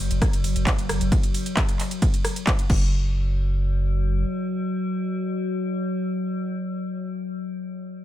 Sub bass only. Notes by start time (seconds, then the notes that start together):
0.00 F#1
0.11 F#1
0.33 F#1
0.44 F#1
0.56 F#1
0.78 F#1
0.89 F#1
1.01 F#1
2.70 F#1